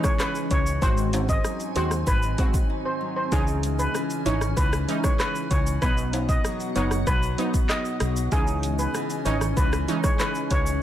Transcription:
Already playing: nylon-string guitar C#3 E3 G#3 D#4, ambient pad E3 C#4 D#5 G#5
0.04 steel pan C#5, kick, cross-stick, shaker
0.19 nylon-string guitar D#4, steel pan B4, cross-stick, clap, shaker
0.35 shaker
0.51 fretless electric bass C#2, nylon-string guitar E3, steel pan C#5, kick, closed hi-hat, shaker
0.66 shaker
0.82 fretless electric bass G#1, nylon-string guitar G#2 D#4, synth stab G#3 C4 F#4, ambient pad C4 F#4 G#5, steel pan C5, kick, shaker
0.97 shaker
1.13 nylon-string guitar C4, closed hi-hat, high timbale, shaker
1.29 steel pan D#5, kick, shaker
1.44 nylon-string guitar F#3, cross-stick, shaker
1.60 shaker
1.75 fretless electric bass D#2, synth stab G#3 C4 F#4, nylon-string guitar D#4, steel pan C5, closed hi-hat, shaker
1.91 cross-stick, shaker
2.07 fretless electric bass G#1, nylon-string guitar D#3, steel pan B4, kick, shaker
2.22 shaker
2.38 synth stab G#3 C4 F#4, nylon-string guitar C4, kick, closed hi-hat, high timbale, shaker
2.54 kick, shaker
2.70 nylon-string guitar D#4
2.85 steel pan C5
3.01 nylon-string guitar F#3
3.16 steel pan C5
3.32 fretless electric bass C#2, nylon-string guitar C#3 D#4, synth stab E3 C#4 D#4, ambient pad E3 C#4 G#5, steel pan G#4, kick, shaker
3.47 shaker
3.63 nylon-string guitar G#3, closed hi-hat, shaker
3.79 steel pan B4, shaker
3.94 nylon-string guitar E3, cross-stick, shaker
4.10 shaker
4.26 fretless electric bass G#1, synth stab E3 C#4 D#4, nylon-string guitar D#4, steel pan C#5, closed hi-hat, shaker
4.41 cross-stick, shaker
4.57 fretless electric bass C#2, nylon-string guitar E3, steel pan B4, kick, shaker
4.73 cross-stick, shaker
4.88 synth stab E3 C#4 D#4, nylon-string guitar G#3, closed hi-hat, shaker
5.04 steel pan C#5, kick, cross-stick, shaker
5.20 nylon-string guitar D#4, steel pan B4, cross-stick, clap, shaker
5.35 shaker
5.51 fretless electric bass C#2, nylon-string guitar E3, steel pan C#5, kick, closed hi-hat, shaker
5.67 shaker
5.82 fretless electric bass B1, nylon-string guitar B2 D#4, synth stab F#3 B3 D#4, ambient pad B3 F#4 F#5, steel pan B4, kick, shaker
5.97 shaker
6.13 nylon-string guitar B3, closed hi-hat, high timbale, shaker
6.29 steel pan D#5, kick, shaker
6.45 nylon-string guitar F#3, cross-stick, shaker
6.60 shaker
6.76 fretless electric bass F#1, synth stab F#3 B3 D#4, nylon-string guitar D#4, steel pan C#5, closed hi-hat, shaker
6.91 cross-stick, shaker
7.07 fretless electric bass B1, nylon-string guitar F#3, steel pan B4, kick, shaker
7.23 shaker
7.38 synth stab F#3 B3 D#4, nylon-string guitar B3, closed hi-hat, high timbale, shaker
7.54 kick, shaker
7.69 nylon-string guitar D#4, steel pan D#5, cross-stick, clap, shaker
7.85 shaker
8.00 fretless electric bass B1, nylon-string guitar F#3, cross-stick, closed hi-hat, shaker
8.16 shaker
8.32 fretless electric bass C#2, nylon-string guitar C#3 D#4, synth stab E3 C#4 D#4, ambient pad E3 C#4 D#5 G#5, steel pan G#4, kick, shaker
8.47 shaker
8.63 nylon-string guitar G#3, closed hi-hat, shaker
8.79 steel pan B4, shaker
8.94 nylon-string guitar E3, cross-stick, shaker
9.10 shaker
9.25 fretless electric bass G#1, synth stab E3 C#4 D#4, nylon-string guitar D#4, steel pan C#5, closed hi-hat, shaker
9.41 cross-stick, shaker
9.57 fretless electric bass C#2, nylon-string guitar E3, steel pan B4, kick, shaker
9.73 cross-stick, shaker
9.88 synth stab E3 C#4 D#4, nylon-string guitar G#3, closed hi-hat, shaker
10.04 steel pan C#5, kick, cross-stick, shaker
10.19 nylon-string guitar D#4, steel pan B4, cross-stick, clap, shaker
10.35 shaker
10.51 fretless electric bass C#2, nylon-string guitar E3, steel pan C#5, kick, closed hi-hat, shaker
10.66 shaker

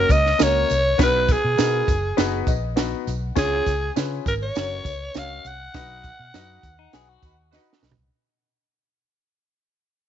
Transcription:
Already playing: upright piano A#3 C#4 F#4 A#4, alto saxophone A#4
0.09 fingered electric bass C#2, vibraphone D#5, alto saxophone D#5, kick, closed hi-hat, tambourine
0.26 snare
0.38 fingered electric bass C#2, upright piano A#3 C#4 F#4 A#4, vibraphone C#5, snare, closed hi-hat, tambourine
0.43 alto saxophone C#5
0.70 fingered electric bass C2, closed hi-hat, tambourine
0.98 fingered electric bass B1, upright piano B3 D#4 F#4 B4, vibraphone B4, kick, snare, closed hi-hat, tambourine
1.03 alto saxophone B4
1.28 vibraphone G#4, kick, closed hi-hat, tambourine
1.32 alto saxophone G#4
1.44 fingered electric bass B2
1.58 fingered electric bass B2, upright piano B3 D#4 F#4 A#4, snare, closed hi-hat, tambourine
1.88 fingered electric bass F#1, kick, closed hi-hat, tambourine
2.17 fingered electric bass F#1, upright piano B3 D#4 F#4 B4, snare, closed hi-hat, tambourine
2.47 fingered electric bass A#1, upright piano D#5, kick, closed hi-hat, tambourine
2.76 upright piano B3 D#4 F#4 B4 F#5, snare, closed hi-hat, tambourine
3.07 fingered electric bass B1, closed hi-hat, tambourine
3.35 fingered electric bass C#2, upright piano C#4 F4 G#4 C#5, vibraphone G#4, alto saxophone G#4, kick, snare, closed hi-hat, tambourine
3.66 fingered electric bass C#2, kick, closed hi-hat, tambourine
3.96 fingered electric bass C#3, upright piano C#4 F4 G#4 B4, snare, closed hi-hat, tambourine
4.26 fingered electric bass G#1, vibraphone A#4, alto saxophone A#4, kick, closed hi-hat, tambourine
4.42 vibraphone C#5, alto saxophone C#5
4.55 fingered electric bass F#1, upright piano C#4 F#4 A#4 C#5, snare, closed hi-hat, tambourine
4.85 fingered electric bass C#2, kick, closed hi-hat, tambourine
5.14 fingered electric bass C#2, upright piano C#4 F#4 A#4 C#5, vibraphone F5, alto saxophone F5, snare, closed hi-hat, tambourine
5.45 fingered electric bass C2, vibraphone F#5, alto saxophone F#5, closed hi-hat, tambourine
5.74 fingered electric bass B1, upright piano D#4 F#4 B4 D#5, kick, snare, closed hi-hat, tambourine
6.04 kick, closed hi-hat, tambourine
6.19 fingered electric bass B2
6.34 fingered electric bass F#2, upright piano D#4 F#4 B4 D#5, snare, closed hi-hat, tambourine
6.63 fingered electric bass D#2, kick, closed hi-hat, tambourine
6.79 clean electric guitar D#4
6.93 fingered electric bass B1, upright piano D#4 F#4 B4 F#5, clean electric guitar G#4, snare, closed hi-hat, tambourine
7.09 clean electric guitar F#4
7.22 fingered electric bass D#2, horn section D#4 F#4 B4, kick, closed hi-hat, tambourine
7.51 horn section D#4 F#4 B4, upright piano D#4 F#4 B4 D#5, snare, tambourine
7.73 snare
7.83 fingered electric bass B1, snare, tambourine
7.91 floor tom
7.97 fingered electric bass C2

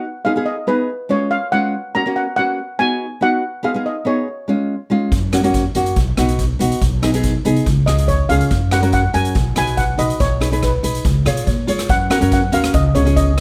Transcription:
Already playing: steel pan F#5
0.25 nylon-string guitar B3 D#4 G#4, steel pan F5
0.36 nylon-string guitar B3 D#4 G#4
0.46 steel pan D#5
0.67 nylon-string guitar B3 D#4 G#4, steel pan B4
1.09 nylon-string guitar G#3 C#4 F4, steel pan C#5
1.31 steel pan F5
1.52 nylon-string guitar G#3 C#4 F4, steel pan F#5
1.95 nylon-string guitar A#3 C#4 F#4, steel pan A#5
2.06 nylon-string guitar A#3 C#4 F#4
2.16 steel pan F#5
2.36 nylon-string guitar A#3 C#4 F#4, steel pan F#5
2.79 nylon-string guitar B3 D#4 F#4, steel pan G#5
3.21 nylon-string guitar B3 D#4 F#4, steel pan F#5
3.63 nylon-string guitar B3 D#4 G#4, steel pan F5
3.74 nylon-string guitar B3 D#4 G#4
3.86 steel pan D#5
4.05 nylon-string guitar B3 D#4 G#4, steel pan C#5
4.48 nylon-string guitar G#3 C#4 F4
4.90 nylon-string guitar G#3 C#4 F4
5.12 upright bass F#2, kick, closed hi-hat
5.32 nylon-string guitar A#3 C#4 F#4, cross-stick, closed hi-hat
5.43 nylon-string guitar A#3 C#4 F#4, closed hi-hat
5.54 kick, closed hi-hat
5.75 upright bass F#2, nylon-string guitar A#3 C#4 F#4, closed hi-hat
5.86 closed hi-hat
5.96 upright bass B1, kick, closed hi-hat
6.17 upright bass B1, nylon-string guitar B3 D#4 F#4, cross-stick, closed hi-hat
6.29 closed hi-hat
6.39 kick, closed hi-hat
6.59 upright bass B1, nylon-string guitar B3 D#4 F#4, closed hi-hat
6.72 closed hi-hat
6.81 upright bass B1, kick, closed hi-hat
7.02 nylon-string guitar B3 D#4 G#4, cross-stick, closed hi-hat
7.14 nylon-string guitar B3 D#4 G#4, closed hi-hat
7.23 kick, closed hi-hat
7.45 upright bass C2, nylon-string guitar B3 D#4 G#4, closed hi-hat
7.56 closed hi-hat
7.66 upright bass C#2, kick, closed hi-hat
7.86 upright bass C#2, nylon-string guitar C#4 F4 G#4, steel pan D#5, cross-stick, closed hi-hat
7.98 closed hi-hat
8.08 steel pan C#5, kick, closed hi-hat
8.29 upright bass C#2, nylon-string guitar C#4 F4 G#4, steel pan F5, closed hi-hat
8.41 closed hi-hat
8.51 upright bass F#2, kick, closed hi-hat
8.71 nylon-string guitar C#4 F#4 A#4, steel pan F#5, cross-stick, closed hi-hat
8.82 nylon-string guitar C#4 F#4 A#4, closed hi-hat
8.93 steel pan F#5, kick, closed hi-hat
9.13 upright bass F#2, nylon-string guitar C#4 F#4 A#4, steel pan G#5, closed hi-hat
9.25 closed hi-hat
9.35 upright bass B1, kick, closed hi-hat
9.55 upright bass B1, nylon-string guitar D#4 F#4 B4, steel pan G#5, cross-stick, closed hi-hat
9.67 closed hi-hat
9.77 steel pan F#5, kick, closed hi-hat
9.98 upright bass B1, nylon-string guitar D#4 F#4 B4, steel pan D#5, closed hi-hat
10.10 closed hi-hat
10.20 upright bass B1, steel pan C#5, kick, closed hi-hat
10.41 nylon-string guitar D#4 G#4 B4, cross-stick, closed hi-hat
10.52 nylon-string guitar D#4 G#4 B4, closed hi-hat
10.63 steel pan B4, kick, cross-stick, closed hi-hat
10.83 upright bass B1, nylon-string guitar D#4 G#4 B4, closed hi-hat
10.95 closed hi-hat
11.05 upright bass C#2, kick, closed hi-hat
11.25 upright bass B2, nylon-string guitar F4 G#4 C#5 F5, cross-stick, closed hi-hat
11.37 closed hi-hat
11.47 upright bass A#2, nylon-string guitar C#5, kick, closed hi-hat
11.67 upright bass G#2, nylon-string guitar F4 G#4 C#5, closed hi-hat
11.79 cross-stick, closed hi-hat
11.89 upright bass F#2, steel pan F#5, kick, closed hi-hat
12.10 nylon-string guitar C#4 F#4 A#4, steel pan F#5, cross-stick, closed hi-hat
12.21 upright bass F#2, nylon-string guitar C#4 F#4 A#4, closed hi-hat
12.32 steel pan F#5, kick, closed hi-hat
12.52 upright bass D#2, nylon-string guitar C#4 F#4 A#4, steel pan F5, closed hi-hat
12.64 cross-stick, closed hi-hat
12.74 upright bass C#2, steel pan D#5, kick, closed hi-hat
12.95 upright bass C#2, nylon-string guitar C#4 F4 G#4, steel pan C#5, closed hi-hat
13.05 nylon-string guitar C#4 F4 G#4, closed hi-hat
13.16 steel pan D#5, kick, closed hi-hat

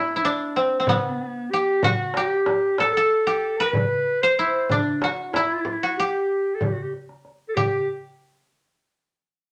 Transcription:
Already playing: koto A3 B3 D4 E4, clarinet E4
0.15 clarinet E4, koto E4
0.22 clarinet D4, koto D4, darbuka ka
0.56 koto C4
0.80 koto C4
0.87 clarinet B3, koto B3, frame drum, darbuka dum
1.51 clarinet G4, koto G4
1.83 clarinet F#4, koto F#4, frame drum, darbuka dum
2.14 clarinet F#4, koto G4, darbuka tek
2.28 clarinet G4
2.46 darbuka tek, frame drum
2.78 clarinet A4, koto A4, darbuka tek, frame drum
2.93 clarinet A4
2.97 koto A4
3.10 darbuka ka
3.27 koto G4
3.57 clarinet A#4, koto B4
3.72 clarinet B4, frame drum, darbuka dum
4.22 clarinet C5, koto C5, darbuka ka
4.39 koto E4
4.69 clarinet D4, koto D4, frame drum, darbuka dum
5.02 koto F#4, darbuka tek, frame drum
5.33 clarinet E4, koto E4, darbuka tek, frame drum
5.65 frame drum
5.83 koto F#4
5.97 clarinet G4, koto G4
6.55 clarinet A4
6.61 clarinet G4, frame drum, darbuka dum
6.73 clarinet F#4
6.83 clarinet G4
6.93 darbuka ka
7.09 darbuka ka
7.25 darbuka ka
7.49 clarinet A4
7.55 clarinet G4, koto G4, frame drum, darbuka dum

